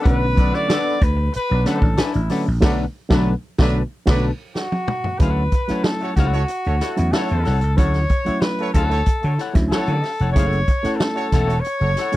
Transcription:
0.02 slap bass B1, reed electric piano C#3 F#3, clean electric guitar D4 A4 B4 F#5, trumpet B4, kick
0.06 reed electric piano A3 C#4, closed hi-hat
0.11 reed electric piano D3
0.35 slap bass B1, horn section B3 A4 D5, muted clean electric guitar stroke, kick, closed hi-hat
0.52 clean electric guitar D4 A4 B4 F#5, horn section E4 C#5 E5, trumpet D5, snare
0.68 horn section B3 A4 D5, clean electric guitar D4 A4 B4 F#5, snare, closed hi-hat
1.00 slap bass D2, trumpet B4, muted clean electric guitar stroke, kick, closed hi-hat
1.17 muted clean electric guitar stroke
1.32 trumpet B4, muted clean electric guitar stroke, muted slap bass stroke, closed hi-hat
1.50 slap bass B1, horn section F#3 D4 B4, muted clean electric guitar stroke
1.65 reed electric piano D3 F#3 A3 C#4, horn section F#3 D4 B4, clean electric guitar D4 A4 B4 F#5, trumpet A4, snare, closed hi-hat
1.81 slap bass A1, muted clean electric guitar stroke, kick
1.97 clean electric guitar D4 A4 B4 G#5, trumpet E4, muted slap bass stroke, snare, closed hi-hat
2.13 slap bass A1, muted clean electric guitar stroke, closed hi-hat
2.29 reed electric piano D3 F#3 A3 C#4, clean electric guitar D4 A4 B4 F#5, snare, open hi-hat
2.46 slap bass A#1, muted clean electric guitar stroke
2.61 slap bass B1, reed electric piano D3 F#3 A3, horn section F#3 D4 B4, clean electric guitar D4 A4 B4 F#5, kick, snare, crash
3.09 slap bass B1, reed electric piano D3 F#3 A3, horn section F#3 D4 B4, clean electric guitar D4 A4 B4 F#5, kick, snare
3.58 slap bass B1, reed electric piano D3 F#3 A3 F#4, horn section F#3 D4 B4, clean electric guitar D4 A4 B4, kick, snare
4.06 slap bass B1, reed electric piano D3 F#3 A3 F#4, horn section F#3 D4 B4, clean electric guitar D4 A4 B4, kick, snare, crash
4.55 trumpet F#4, snare
4.72 high tom
4.88 mid tom
5.04 floor tom
5.19 slap bass D2, reed electric piano F#3 A3 C#4 E4, clean electric guitar E4 A4 C#5 F#5, trumpet B4, kick, closed hi-hat
5.52 muted clean electric guitar stroke, kick, closed hi-hat
5.68 reed electric piano F#3 A3 C#4 E4, clean electric guitar A4 C#5 F#5, muted slap bass stroke, snare, closed hi-hat
5.72 clean electric guitar E4
5.84 trumpet A4, muted clean electric guitar stroke, snare
6.00 horn section A3 F#4 C#5, muted clean electric guitar stroke, closed hi-hat
6.16 slap bass C#2, clean electric guitar E4 A4 C#5 F#5, trumpet F#4, kick, snare, closed hi-hat
6.32 horn section A3 F#4 C#5, muted clean electric guitar stroke, closed hi-hat
6.48 muted clean electric guitar stroke, closed hi-hat
6.64 slap bass D2, horn section A3 F#4 C#5, closed hi-hat
6.80 clean electric guitar E4 A4 C#5 F#5, snare, closed hi-hat
6.96 slap bass E2, reed electric piano F#3 A3 C#4 E4, muted clean electric guitar stroke, closed hi-hat
7.12 horn section A3 F#4 C#5, clean electric guitar E4 A4 C#5 F#5, trumpet A4, snare
7.29 slap bass E2, muted clean electric guitar stroke, closed hi-hat
7.45 slap bass C2, clean electric guitar E4 A4 C#5 F#5, snare, open hi-hat
7.61 slap bass C#2, muted clean electric guitar stroke, closed hi-hat
7.77 slap bass D2, reed electric piano F#3 A3 C#4 E4, clean electric guitar E4 A4 C#5 F#5, trumpet C#5, kick, closed hi-hat
7.94 snare, closed hi-hat
8.09 muted clean electric guitar stroke, kick, closed hi-hat
8.25 reed electric piano F#3 A3 C#4 E4, clean electric guitar E4 A4 C#5 F#5, muted slap bass stroke, closed hi-hat
8.41 trumpet B4, muted clean electric guitar stroke, snare
8.58 horn section A3 F#4 C#5, muted clean electric guitar stroke, closed hi-hat
8.74 slap bass D2, clean electric guitar E4 A4 C#5 F#5, trumpet A4, kick, closed hi-hat
8.90 horn section A3 F#4 C#5, muted clean electric guitar stroke, closed hi-hat
9.06 muted slap bass stroke, muted clean electric guitar stroke, kick, closed hi-hat
9.22 slap bass D3, horn section A3 F#4 C#5, closed hi-hat
9.38 clean electric guitar E4 A4 C#5 F#5, snare, closed hi-hat
9.54 slap bass D2, reed electric piano F#3 A3 C#4 E4, kick, snare, closed hi-hat
9.69 horn section A3 F#4 C#5, clean electric guitar E4 A4, trumpet A4, snare
9.73 clean electric guitar C#5 F#5
9.87 slap bass D3, closed hi-hat
10.03 muted clean electric guitar stroke, snare, open hi-hat
10.19 slap bass F1, clean electric guitar A4 C#5 F#5, closed hi-hat
10.23 clean electric guitar E4
10.33 slap bass F#1, reed electric piano A3 C#4 E4 G#4, trumpet C#5, kick, closed hi-hat
10.37 clean electric guitar E4 A4 C#5 F#5
10.52 closed hi-hat
10.68 muted clean electric guitar stroke, kick, closed hi-hat
10.83 reed electric piano A3 C#4 E4 A4, clean electric guitar C#5 F#5, muted slap bass stroke, snare, closed hi-hat
10.87 clean electric guitar E4 A4
10.96 trumpet A4, snare
11.02 muted clean electric guitar stroke
11.15 horn section A3 F#4 C#5, muted clean electric guitar stroke, closed hi-hat
11.32 slap bass E1, clean electric guitar E4 A4 C#5 F#5, kick, snare, closed hi-hat
11.46 horn section A3 F#4 C#5, muted clean electric guitar stroke
11.50 closed hi-hat
11.60 trumpet C#5
11.64 muted clean electric guitar stroke, closed hi-hat
11.80 slap bass F#1, horn section A3 F#4 C#5, closed hi-hat
11.96 clean electric guitar E4 A4, snare, closed hi-hat
12.00 clean electric guitar C#5 F#5
12.12 reed electric piano A3 C#4, closed hi-hat

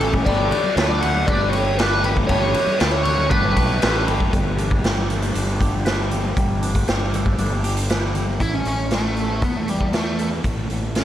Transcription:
Already playing: fingered electric bass A1, clean electric guitar E3, lead electric guitar A4
0.00 clean electric guitar G3 C#4 G4, ride, low conga
0.13 kick, high conga
0.25 fingered electric bass G1, clean electric guitar G3 A3 D4 G4 B4, lead electric guitar D5, kick, ride
0.51 clean electric guitar D4 G4 B4, ride, low conga
0.64 high conga
0.76 fingered electric bass D2, clean electric guitar A3 D4 G4, lead electric guitar C#5, snare, ride
0.80 clean electric guitar B4
0.89 lead electric guitar D5, high conga
1.01 clean electric guitar G4 B4, lead electric guitar F#5, ride, low conga
1.06 clean electric guitar D4
1.14 high conga
1.27 fingered electric bass G1, clean electric guitar G3 A3 D4 G4, lead electric guitar D5, kick, ride, low conga
1.31 clean electric guitar B4
1.51 lead electric guitar C#5, ride
1.78 clean electric guitar A3 D4 G4, lead electric guitar B4, snare, ride
1.82 clean electric guitar B4
2.04 clean electric guitar D4 G4 B4, ride, low conga
2.17 kick
2.27 fingered electric bass G1, clean electric guitar G3 A3 D4 G4, lead electric guitar C#5, kick, ride
2.31 clean electric guitar B4
2.54 clean electric guitar D4 G4 B4, ride, low conga
2.67 high conga
2.79 fingered electric bass D2, clean electric guitar A3 D4 G4 B4, lead electric guitar B4, snare, ride
2.92 lead electric guitar C#5
3.04 clean electric guitar D4 G4 B4, ride, low conga
3.18 high conga
3.29 fingered electric bass G1, clean electric guitar G3 A3 D4 G4 B4, lead electric guitar B4, kick, ride
3.44 high conga
3.57 fingered electric bass B1, kick, ride
3.81 fingered electric bass A1, clean electric guitar A3 D4 G4 B4, snare, ride
4.07 fingered electric bass G1, clean electric guitar D4 G4 B4, ride, low conga
4.20 kick, high conga
4.33 fingered electric bass G1, clean electric guitar G3, kick, closed hi-hat
4.58 clean electric guitar D4, closed hi-hat
4.71 kick
4.84 fingered electric bass G1, clean electric guitar G4, snare, closed hi-hat
4.97 high conga
5.09 clean electric guitar A3, closed hi-hat, low conga
5.22 closed hi-hat
5.34 fingered electric bass G1, clean electric guitar D4, closed hi-hat, high conga
5.59 clean electric guitar G4, kick, closed hi-hat
5.85 clean electric guitar B4, snare, closed hi-hat
6.11 clean electric guitar G4, closed hi-hat, low conga
6.24 high conga
6.37 fingered electric bass G1, clean electric guitar G3, kick, closed hi-hat
6.62 clean electric guitar D4, closed hi-hat
6.75 kick, closed hi-hat
6.88 fingered electric bass G1, clean electric guitar G4, snare, closed hi-hat
7.00 high conga
7.13 clean electric guitar A3, closed hi-hat, low conga
7.26 kick
7.38 fingered electric bass G1, clean electric guitar D4, closed hi-hat, high conga
7.64 clean electric guitar G4, closed hi-hat
7.77 closed hi-hat
7.90 clean electric guitar B4, snare, closed hi-hat
8.14 clean electric guitar G4, closed hi-hat, low conga
8.27 high conga
8.40 fingered electric bass A1, lead electric guitar E4, kick, closed hi-hat
8.54 lead electric guitar C#4
8.65 fingered electric bass A1, lead electric guitar C#4, closed hi-hat
8.91 lead electric guitar A3, snare, closed hi-hat
9.17 closed hi-hat
9.42 fingered electric bass E2, lead electric guitar B3, kick, closed hi-hat
9.57 lead electric guitar A3
9.68 lead electric guitar G3, closed hi-hat
9.81 kick
9.93 lead electric guitar A3, snare, closed hi-hat
10.19 closed hi-hat
10.44 fingered electric bass A1, kick, closed hi-hat
10.70 fingered electric bass A1, closed hi-hat
10.95 lead electric guitar C#4, snare, closed hi-hat

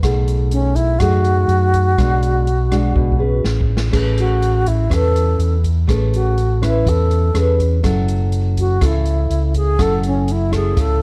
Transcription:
0.02 fingered electric bass B1, nylon-string guitar B2 A3 D#4 G#4, kick, cross-stick, closed hi-hat
0.28 closed hi-hat
0.51 alto flute C#4, closed hi-hat
0.76 alto flute E4, kick, closed hi-hat
0.99 fingered electric bass F#2, nylon-string guitar F#3 A3 D#4 G#4, alto flute F#4, kick, cross-stick, closed hi-hat
1.24 closed hi-hat
1.48 fingered electric bass F#2, closed hi-hat
1.74 kick, closed hi-hat
1.98 fingered electric bass B1, nylon-string guitar B2 G#3 D4 F#4, kick, cross-stick, closed hi-hat
2.23 closed hi-hat
2.47 closed hi-hat
2.71 nylon-string guitar G#3 D4 F#4, kick, cross-stick, closed hi-hat
2.95 fingered electric bass B1, nylon-string guitar B2, kick
3.12 kick
3.19 nylon-string guitar C#4 G#4 B4
3.44 fingered electric bass A1, snare
3.61 kick
3.77 snare
3.91 fingered electric bass A1, nylon-string guitar A3 C#4 G#4 B4, kick, cross-stick, crash
4.18 alto flute F#4, closed hi-hat
4.42 closed hi-hat
4.66 alto flute E4, kick, closed hi-hat
4.90 fingered electric bass E2, nylon-string guitar E3 C#4 B4, alto flute A4, kick, cross-stick, closed hi-hat
5.16 closed hi-hat
5.39 fingered electric bass E2, closed hi-hat
5.64 kick, closed hi-hat
5.87 fingered electric bass A1, nylon-string guitar A3 C#4 G#4 B4, kick, cross-stick, closed hi-hat
6.14 alto flute F#4, closed hi-hat
6.38 closed hi-hat
6.61 nylon-string guitar C#4 B4, alto flute E4, kick, cross-stick, closed hi-hat
6.85 fingered electric bass E2, nylon-string guitar E3, alto flute A4, kick, closed hi-hat
7.11 closed hi-hat
7.34 fingered electric bass E2, nylon-string guitar C#4 G#4 B4, cross-stick, closed hi-hat
7.60 kick, closed hi-hat
7.83 fingered electric bass F#1, nylon-string guitar F#3 C#4 E4 A4, kick, cross-stick, closed hi-hat
8.08 closed hi-hat
8.32 closed hi-hat
8.57 alto flute F#4, kick, closed hi-hat
8.81 fingered electric bass C#2, nylon-string guitar C#3 C#4 E4 A4, kick, cross-stick, closed hi-hat
8.86 alto flute E4
9.05 closed hi-hat
9.30 fingered electric bass C#2, closed hi-hat
9.54 alto flute G#4, kick, closed hi-hat
9.78 fingered electric bass F#1, nylon-string guitar F#3 C#4 E4 A4, alto flute A4, kick, cross-stick, closed hi-hat
10.03 closed hi-hat
10.07 alto flute C#4
10.28 alto flute E4, closed hi-hat
10.51 nylon-string guitar C#4 E4 A4, kick, cross-stick, closed hi-hat
10.56 alto flute G#4
10.76 fingered electric bass C#2, nylon-string guitar C#3, alto flute A4, kick, closed hi-hat

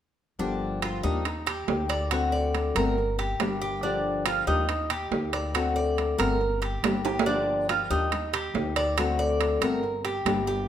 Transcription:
0.39 upright bass G1, nylon-string guitar D3 F3 A#3 D4 G4, cuban tres D4
0.82 cuban tres F4, high timbale, low timbale
1.03 upright bass D#2, nylon-string guitar F3 A#3 D4 G4, cuban tres D#4
1.25 muted nylon-string guitar stroke, high timbale
1.46 cuban tres G4, high timbale
1.68 upright bass D2, nylon-string guitar A#3 D#4 G4, low timbale
1.89 cuban tres D5, high timbale
2.11 nylon-string guitar D3 A3 C4 F#4, cuban tres F#4, high timbale
2.32 cuban tres D5
2.55 high timbale, low timbale
2.75 upright bass G1, nylon-string guitar A3 C4 F#4, cuban tres A#4, high timbale
2.98 muted nylon-string guitar stroke
3.19 cuban tres G4, high timbale
3.39 upright bass G1, nylon-string guitar G3 A#3 D4 G4, high timbale, low timbale
3.62 cuban tres G4
3.83 nylon-string guitar D3 F3 A#3 D4 G4, cuban tres D4
4.26 cuban tres F4, high timbale, low timbale
4.47 upright bass D#2, nylon-string guitar F3 A#3 D4 G4, cuban tres D#4
4.69 muted nylon-string guitar stroke, high timbale
4.90 cuban tres G4, high timbale
5.11 upright bass D2, nylon-string guitar A#3 D#4 G4, low timbale
5.33 cuban tres D5, high timbale
5.54 nylon-string guitar D3 A3 C4 F#4, cuban tres F#4, high timbale
5.76 cuban tres D5
5.98 high timbale, low timbale
6.18 upright bass G1, nylon-string guitar A3 C4 F#4, cuban tres A#4, high timbale
6.40 muted nylon-string guitar stroke
6.62 cuban tres G4, high timbale
6.83 upright bass G1, nylon-string guitar G3 A#3 D4 G4, high timbale, low timbale
7.05 cuban tres G4, high timbale
7.19 low timbale
7.26 nylon-string guitar D3 F3 A#3 D4 G4, cuban tres D4
7.69 cuban tres F4, high timbale, low timbale
7.90 upright bass D#2, nylon-string guitar F3 A#3 D4 G4, cuban tres D#4
8.12 muted nylon-string guitar stroke, high timbale
8.33 cuban tres G4, high timbale
8.54 upright bass D2, nylon-string guitar A#3 D#4 G4, low timbale
8.76 cuban tres D5, high timbale
8.97 nylon-string guitar D3 A3 C4 F#4, cuban tres F#4, high timbale
9.19 cuban tres D5
9.41 high timbale, low timbale
9.61 upright bass G1, nylon-string guitar A3 C4 F#4, cuban tres A#4, high timbale
9.83 muted nylon-string guitar stroke
10.05 cuban tres G4, high timbale
10.25 upright bass G1, nylon-string guitar G3 A#3 D4 G4, high timbale, low timbale
10.47 cuban tres G4

